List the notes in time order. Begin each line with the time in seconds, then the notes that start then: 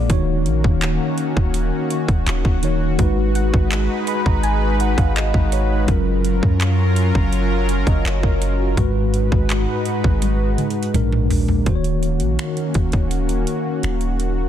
Already playing: A#2 A#3 G#4 D5
0.09 D#1 D#3 C#4 D#4 F#4 C#5, kick, closed hi-hat
0.46 A#1, closed hi-hat
0.64 D#1, kick
0.82 clap, closed hi-hat
1.18 closed hi-hat
1.37 D#1, kick
1.54 closed hi-hat
1.90 closed hi-hat
2.08 D#1, kick, closed hi-hat
2.27 D#1, clap, closed hi-hat
2.45 D#1, kick
2.62 D#3 D#4 F#4 C#5, closed hi-hat
2.98 G#1 G#3 D#4 F#4 B4, kick, closed hi-hat
3.35 F#5, closed hi-hat
3.54 G#1, kick
3.71 clap, closed hi-hat
4.07 B5, closed hi-hat
4.26 G#1 A#5, kick
4.43 G#5, closed hi-hat
4.80 F#5, closed hi-hat
4.98 G#1 F5, kick, closed hi-hat
5.16 D#5, clap, closed hi-hat
5.34 G#1, kick
5.52 C#5, closed hi-hat
5.87 F#1 F#3 C#4 F4 A#4, kick, closed hi-hat
5.91 A#4
6.25 closed hi-hat
6.43 F#2, kick
6.61 clap, closed hi-hat
6.96 closed hi-hat
7.15 F#1, kick
7.33 closed hi-hat
7.69 closed hi-hat
7.87 F#1 D#5, kick, closed hi-hat
8.05 F#1 C#5, clap, closed hi-hat
8.23 F#1 A#4, kick
8.42 closed hi-hat
8.60 F#4
8.76 G#1 G#2 G#3 D#4 F#4 B4, kick, closed hi-hat
8.80 B4
9.14 closed hi-hat
9.32 G#1, kick
9.50 clap, closed hi-hat
9.85 closed hi-hat
10.04 G#1, kick
10.22 closed hi-hat, high tom
10.58 closed hi-hat, mid tom
10.70 closed hi-hat
10.83 closed hi-hat
10.94 A#1 A#2 G#3 D4 A#4, closed hi-hat, mid tom
11.12 mid tom
11.30 floor tom, open hi-hat
11.48 floor tom
11.65 D#1 D#3 A#3 C#4 F#4 C5, kick, closed hi-hat
11.75 C#5
11.84 closed hi-hat
12.03 closed hi-hat
12.20 A#1, closed hi-hat
12.39 finger snap, closed hi-hat
12.57 closed hi-hat
12.74 D#1, kick, closed hi-hat
12.92 D#1, kick, closed hi-hat
13.11 closed hi-hat
13.29 closed hi-hat
13.47 closed hi-hat
13.83 D#1, finger snap, closed hi-hat
14.01 closed hi-hat
14.20 closed hi-hat